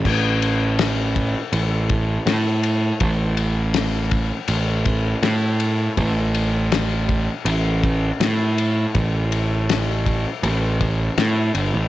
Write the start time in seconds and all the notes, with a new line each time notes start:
0.05 A1, kick, crash
0.42 ride
0.79 snare, ride
1.16 kick, ride
1.53 A1, ride
1.89 kick, ride
2.26 A2, snare, ride
2.64 ride
3.00 A1, kick, ride
3.37 ride
3.74 snare, ride
4.11 kick, ride
4.48 A1, ride
4.86 kick, ride
5.23 A2, snare, ride
5.60 ride
5.97 A1, kick, ride
6.35 ride
6.72 snare, ride
7.09 kick, ride
7.45 A1, ride
7.84 kick, ride
8.20 A2, snare, ride
8.58 ride
8.95 A1, kick, ride
9.32 ride
9.69 snare, ride
10.06 kick, ride
10.43 A1, ride
10.81 kick, ride
11.18 A2, snare, ride
11.55 G1, ride
11.74 A1